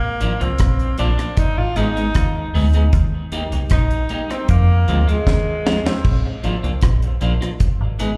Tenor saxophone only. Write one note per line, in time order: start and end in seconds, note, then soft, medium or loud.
0.00 0.43 A#3 medium
0.42 0.98 C4 loud
0.99 1.39 D4 loud
1.38 1.59 D#4 loud
1.58 1.78 F4 loud
1.77 2.54 D#4 loud
3.72 4.33 D#4 loud
4.31 4.49 C4 medium
4.50 5.10 A#3 medium
5.08 5.88 G#3 medium
5.86 6.25 C4 medium